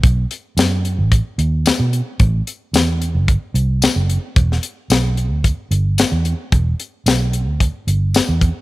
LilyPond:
<<
  \new Staff \with { instrumentName = "Fingered electric bass" } { \clef bass \time 4/4 \key e \minor \tempo 4 = 111 b,,8 r8 fis,8. a,,8 r16 dis,8. b,8 r16 | a,,8 r8 e,8. g,,8 r16 c,8. fis,,8 r16 | e,,8 r8 b,,8. d,8 r16 g,,8. e,8 r16 | e,,8 r8 b,,8. d,8 r16 g,,8. e,8 r16 | }
  \new DrumStaff \with { instrumentName = "Drums" } \drummode { \time 4/4 <hh bd>8 hh8 <hh sn tamb>8 hh8 <hh bd>8 hh8 <hh sn tamb>8 hh8 | <hh bd>8 hh8 <hh sn tamb>8 hh8 <hh bd>8 hh8 <hh sn tamb>8 hh8 | <hh bd>16 sn16 hh8 <hh sn tamb>8 hh8 <hh bd>8 hh8 <hh sn tamb>8 hh8 | <hh bd>8 hh8 <hh sn tamb>8 hh8 <hh bd>8 hh8 <hh sn tamb>8 <hh bd>8 | }
>>